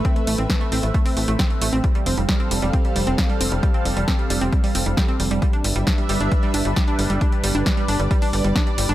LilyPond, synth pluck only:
\new Staff \with { instrumentName = "Synth pluck" } { \clef bass \time 4/4 \key f \lydian \tempo 4 = 134 c'16 a16 a16 c'16 a16 a16 c'16 a16 a16 c'16 a16 a16 c'16 a16 a16 c'16 | g16 g16 c'16 g16 g16 c'16 g16 g16 c'16 g16 g16 c'16 g16 g16 c'16 g16 | g16 c'16 g16 g16 c'16 g16 g16 c'16 g16 g16 c'16 g16 g16 c'16 g16 g16 | g16 d'16 g16 g16 d'16 g16 g16 d'16 g16 g16 d'16 g16 g16 d'16 g16 g16 |
d'16 g16 g16 d'16 g16 g16 d'16 g16 g16 d'16 g16 g16 d'16 g16 g16 d'16 | }